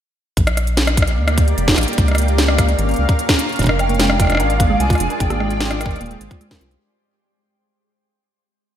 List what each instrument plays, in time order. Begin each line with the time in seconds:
0.37 analog synth bass A#1, ambient pad A#3 G4 D5, kick, closed hi-hat
0.47 cross-stick, closed hi-hat
0.57 cross-stick, closed hi-hat
0.67 closed hi-hat
0.77 snare, closed hi-hat
0.87 cross-stick, closed hi-hat
0.97 kick, closed hi-hat
1.02 cross-stick
1.07 closed hi-hat
1.18 analog synth bass D2
1.28 cross-stick, closed hi-hat
1.38 kick, closed hi-hat
1.48 closed hi-hat
1.58 analog synth bass F1, closed hi-hat
1.68 kick, snare, closed hi-hat
1.71 snare
1.74 cross-stick, snare, closed hi-hat
1.78 analog synth bass A#1, closed hi-hat
1.81 closed hi-hat
1.83 closed hi-hat
1.88 closed hi-hat
1.93 closed hi-hat
1.98 analog synth bass C#2, ambient pad C#4 A#4 F5, kick, closed hi-hat
2.08 cross-stick, closed hi-hat
2.11 cross-stick
2.15 cross-stick, closed hi-hat
2.18 closed hi-hat
2.22 closed hi-hat
2.28 closed hi-hat
2.38 snare, closed hi-hat
2.48 cross-stick
2.58 kick, cross-stick, closed hi-hat
2.69 closed hi-hat
2.79 analog synth bass G#1, closed hi-hat
2.89 closed hi-hat
2.91 closed hi-hat
2.94 closed hi-hat
2.96 analog synth bass C#2, closed hi-hat
3.09 kick, closed hi-hat
3.19 closed hi-hat
3.29 kick, snare, closed hi-hat
3.39 closed hi-hat
3.49 closed hi-hat
3.52 closed hi-hat
3.56 synth texture D4 D5, synth arpeggio sound D4, ambient pad G#4, closed hi-hat
3.59 analog synth bass F1, ambient pad F4 D5, kick, closed hi-hat
3.62 kick, closed hi-hat
3.64 kick, closed hi-hat
3.67 synth arpeggio sound A#4, kick, cross-stick
3.79 soft synth lead G5, cross-stick, closed hi-hat
3.89 synth arpeggio sound A#3, closed hi-hat
3.95 closed hi-hat
3.99 synth arpeggio sound G#3, snare, closed hi-hat
4.10 cross-stick
4.19 synth arpeggio sound F4, kick, cross-stick, closed hi-hat
4.22 cross-stick
4.25 cross-stick
4.27 synth arpeggio sound D4, cross-stick
4.30 cross-stick, closed hi-hat
4.32 cross-stick
4.35 cross-stick
4.37 analog synth bass G#1, synth arpeggio sound A#4, soft synth lead F5, cross-stick, closed hi-hat
4.50 closed hi-hat
4.60 synth arpeggio sound A#3, kick, closed hi-hat
4.70 synth arpeggio sound G#3
4.80 analog synth bass C2, soft synth lead G#5, closed hi-hat
4.90 synth arpeggio sound F4, kick, closed hi-hat
4.93 cross-stick, closed hi-hat
4.95 closed hi-hat
4.98 analog synth bass F1, synth arpeggio sound D4, closed hi-hat
5.00 closed hi-hat
5.10 synth arpeggio sound A#4, closed hi-hat
5.20 analog synth bass G#1, ambient pad G#3 G4 C5, soft synth lead G5, kick, closed hi-hat
5.30 synth arpeggio sound A#3, cross-stick, closed hi-hat
5.40 synth arpeggio sound G#3, cross-stick
5.50 closed hi-hat
5.60 synth arpeggio sound F4, snare, closed hi-hat
5.70 synth arpeggio sound D4, cross-stick, closed hi-hat
5.81 synth arpeggio sound A#4, cross-stick, closed hi-hat
5.86 kick
5.91 closed hi-hat
5.96 closed hi-hat
6.01 analog synth bass D#1, synth arpeggio sound A#3, closed hi-hat
6.06 closed hi-hat
6.11 synth arpeggio sound G#3, closed hi-hat
6.21 analog synth bass G#1, closed hi-hat
6.31 synth arpeggio sound F4, kick, closed hi-hat
6.41 synth arpeggio sound G#3, closed hi-hat
6.51 synth arpeggio sound A#4, kick, snare, closed hi-hat
6.61 analog synth bass C2, synth arpeggio sound F4, closed hi-hat
6.71 synth arpeggio sound G#3, closed hi-hat